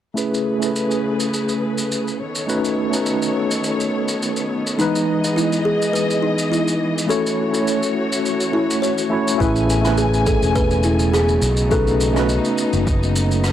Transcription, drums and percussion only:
0.17 shaker medium
0.34 shaker soft
0.62 shaker medium
0.76 shaker medium
0.91 shaker soft
1.20 shaker medium
1.34 shaker medium
1.49 shaker soft
1.78 shaker medium
1.92 shaker medium
2.08 shaker soft
2.35 shaker medium
2.49 shaker medium
2.65 shaker soft
2.93 shaker medium
3.06 shaker medium
3.22 shaker soft
3.51 shaker medium
3.64 shaker medium
3.80 shaker soft
4.08 shaker medium
4.22 shaker medium
4.36 shaker soft
4.67 shaker medium
4.79 shaker medium
4.95 shaker soft
5.24 shaker medium
5.38 shaker medium
5.52 shaker medium
5.82 shaker medium
5.95 shaker medium
6.10 shaker soft
6.38 shaker medium
6.53 shaker medium
6.68 shaker soft
6.98 shaker medium
7.10 shaker medium
7.26 shaker soft
7.54 shaker medium
7.67 shaker medium
7.83 shaker soft
8.12 shaker medium
8.26 shaker medium
8.40 shaker medium
8.71 shaker medium
8.83 shaker medium
8.98 shaker soft
9.28 shaker medium
9.40 kick loud
9.40 shaker medium
9.56 shaker soft
9.70 shaker medium
9.85 cross-stick medium
9.85 shaker soft
9.97 shaker medium
10.14 shaker soft
10.27 kick loud
10.27 shaker medium
10.43 shaker soft
10.56 kick loud
10.56 shaker medium
10.71 shaker soft
10.83 shaker medium
10.99 shaker soft
11.14 cross-stick medium
11.14 shaker medium
11.29 shaker soft
11.42 shaker medium
11.57 shaker soft
11.71 kick loud
11.71 shaker medium
11.87 shaker soft
12.01 shaker medium
12.16 cross-stick medium
12.16 shaker soft
12.29 shaker medium
12.45 shaker soft
12.58 shaker medium
12.73 shaker soft
12.87 kick loud
12.87 shaker medium
13.03 shaker soft
13.16 shaker medium
13.31 shaker soft
13.44 cross-stick medium
13.44 shaker medium

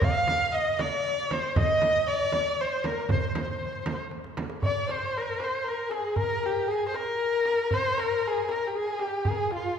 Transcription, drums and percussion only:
0.02 frame drum medium
0.02 tombak dum medium
0.27 tombak tek medium
0.27 frame drum medium
0.79 tombak tek medium
0.79 frame drum medium
1.31 tombak tek medium
1.31 frame drum medium
1.56 frame drum loud
1.56 tombak dum medium
1.82 tombak tek medium
1.82 frame drum medium
2.32 tombak tek medium
2.32 frame drum medium
2.84 tombak tek medium
2.84 frame drum medium
3.09 frame drum medium
3.09 tombak dum medium
3.35 tombak tek medium
3.35 frame drum medium
3.61 tombak ka soft
3.86 tombak tek medium
3.86 frame drum medium
4.11 tombak tek medium
4.24 tombak ka medium
4.37 tombak tek medium
4.37 frame drum medium
4.50 tombak ka medium
4.63 tombak dum medium
4.89 tombak tek medium
5.40 tombak tek medium
5.66 tombak ka soft
5.91 tombak tek medium
6.16 tombak dum medium
6.43 tombak tek medium
6.94 tombak tek medium
7.20 tombak ka soft
7.45 tombak tek medium
7.71 tombak dum medium
7.98 tombak tek medium
8.49 tombak tek medium
8.74 tombak ka soft
8.99 tombak tek medium
9.25 tombak dum medium
9.51 tombak tek medium

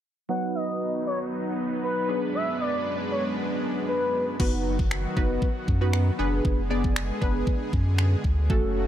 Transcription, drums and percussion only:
4.40 kick loud
4.40 crash medium
4.79 kick medium
4.91 finger snap loud
5.17 kick medium
5.42 kick medium
5.68 kick medium
5.93 finger snap loud
6.45 kick loud
6.84 kick medium
6.96 finger snap loud
7.22 kick medium
7.47 kick medium
7.73 kick medium
7.98 finger snap loud
8.24 kick medium
8.50 kick loud

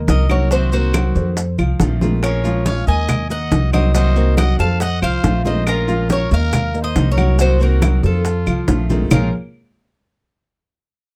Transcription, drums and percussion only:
0.08 high bongo medium
0.08 low bongo medium
0.08 high conga loud
0.08 maracas medium
0.29 high conga medium
0.29 claves medium
0.29 maracas soft
0.51 high bongo medium
0.51 maracas medium
0.72 high bongo soft
0.72 high conga soft
0.72 maracas soft
0.94 high bongo medium
0.94 high conga loud
0.94 claves medium
0.94 maracas medium
1.16 high bongo soft
1.16 high conga soft
1.16 maracas soft
1.37 high bongo medium
1.37 high conga soft
1.37 maracas medium
1.58 high bongo soft
1.58 high conga soft
1.58 claves medium
1.58 maracas soft
1.80 high bongo medium
1.80 low bongo medium
1.80 high conga medium
1.80 maracas medium
2.01 high conga medium
2.01 maracas soft
2.23 high bongo medium
2.23 high conga soft
2.23 claves medium
2.23 maracas medium
2.44 high bongo soft
2.44 high conga soft
2.44 maracas soft
2.66 high bongo medium
2.66 high conga loud
2.66 maracas medium
2.87 high bongo soft
2.87 high conga soft
2.87 maracas soft
3.09 high bongo medium
3.09 high conga soft
3.09 low conga medium
3.09 claves medium
3.09 maracas medium
3.30 high bongo soft
3.30 high conga soft
3.30 maracas soft
3.52 high bongo medium
3.52 low bongo medium
3.52 high conga medium
3.52 maracas medium
3.73 high conga medium
3.73 claves medium
3.73 maracas soft
3.95 high bongo medium
3.95 high conga soft
3.95 maracas medium
4.16 high bongo soft
4.16 high conga soft
4.16 maracas soft
4.37 high bongo medium
4.37 high conga loud
4.37 claves medium
4.37 maracas medium
4.59 high bongo soft
4.59 high conga soft
4.59 maracas soft
4.80 high bongo medium
4.80 high conga soft
4.80 maracas medium
5.02 high bongo soft
5.02 high conga soft
5.02 claves medium
5.02 maracas soft
5.24 high bongo medium
5.24 low bongo medium
5.24 high conga medium
5.24 maracas medium
5.46 high conga medium
5.46 maracas soft
5.67 high bongo medium
5.67 claves medium
5.67 maracas medium
5.88 high bongo soft
5.88 high conga soft
5.88 maracas soft
6.10 high bongo medium
6.10 high conga loud
6.10 maracas medium
6.31 high bongo soft
6.31 high conga soft
6.31 maracas soft
6.53 high bongo medium
6.53 high conga soft
6.53 low conga medium
6.53 claves medium
6.53 maracas medium
6.74 high bongo soft
6.74 high conga soft
6.74 maracas soft
6.96 high bongo medium
6.96 low bongo medium
6.96 high conga loud
6.96 maracas medium
7.17 high conga medium
7.17 claves medium
7.17 maracas soft
7.39 high bongo medium
7.39 high conga soft
7.39 maracas medium
7.60 high bongo soft
7.60 high conga soft
7.60 maracas soft
7.82 high bongo medium
7.82 high conga loud
7.82 claves medium
7.82 maracas medium
8.03 high bongo soft
8.03 high conga soft
8.03 maracas soft
8.25 high bongo medium
8.25 high conga soft
8.25 maracas medium
8.47 high bongo soft
8.47 high conga soft
8.47 claves medium
8.47 maracas soft
8.68 high bongo medium
8.68 low bongo medium
8.68 high conga medium
8.68 maracas medium
8.90 high conga medium
8.90 maracas soft
9.11 low bongo loud
9.11 low conga loud
9.11 claves loud
9.11 maracas medium

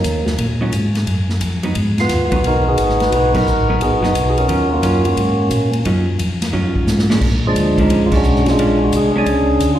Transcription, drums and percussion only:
0.04 kick soft
0.04 hi-hat pedal medium
0.04 ride medium
0.27 snare medium
0.38 kick soft
0.38 ride medium
0.72 kick soft
0.72 hi-hat pedal medium
0.72 ride medium
0.95 snare soft
0.95 ride soft
1.07 kick soft
1.07 ride medium
1.29 snare soft
1.41 kick soft
1.41 hi-hat pedal medium
1.41 ride medium
1.63 ride soft
1.75 kick soft
1.75 ride medium
1.98 snare soft
1.98 ride soft
2.09 kick soft
2.09 snare soft
2.09 hi-hat pedal medium
2.09 ride medium
2.32 kick medium
2.32 ride medium
2.44 kick soft
2.44 ride medium
2.78 kick soft
2.78 hi-hat pedal medium
2.78 ride medium
2.89 snare soft
3.00 snare soft
3.00 ride soft
3.12 kick soft
3.12 ride medium
3.35 kick medium
3.35 crash medium
3.47 hi-hat pedal medium
3.81 kick soft
3.81 ride medium
4.03 snare soft
4.15 kick soft
4.15 hi-hat pedal medium
4.15 ride medium
4.37 ride soft
4.49 kick soft
4.49 ride medium
4.83 kick soft
4.83 hi-hat pedal medium
4.83 ride medium
5.05 ride medium
5.17 kick soft
5.17 ride medium
5.51 kick soft
5.51 hi-hat pedal medium
5.51 ride medium
5.73 ride soft
5.85 kick soft
5.85 ride medium
6.19 kick soft
6.19 hi-hat pedal medium
6.19 ride medium
6.42 snare medium
6.42 ride medium
6.54 kick soft
6.76 kick medium
6.87 snare medium
6.87 hi-hat pedal medium
6.99 snare medium
7.10 snare medium
7.21 kick medium
7.21 crash medium
7.56 kick soft
7.56 hi-hat pedal medium
7.56 ride medium
7.78 kick medium
7.78 ride medium
7.90 kick soft
7.90 ride medium
8.12 kick medium
8.12 crash medium
8.24 hi-hat pedal medium
8.36 snare soft
8.46 snare soft
8.46 ride soft
8.58 kick soft
8.58 ride medium
8.92 kick soft
8.92 hi-hat pedal medium
8.92 ride medium
9.26 kick soft
9.26 ride medium
9.60 kick soft
9.60 hi-hat pedal medium
9.60 ride medium

